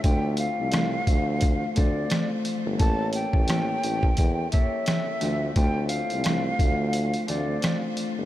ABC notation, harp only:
X:1
M:4/4
L:1/8
Q:"Swing 16ths" 1/4=87
K:Dm
V:1 name="Harp"
[A,CDFA]2 [A,CDFA]3 [A,CDFA]2 z | [B,^CEGA]2 [B,CEGA]3 [B,CEGA]2 [A,=CDFA] | [A,CDFA]2 [A,CDFA]3 [A,CDFA]2 z |]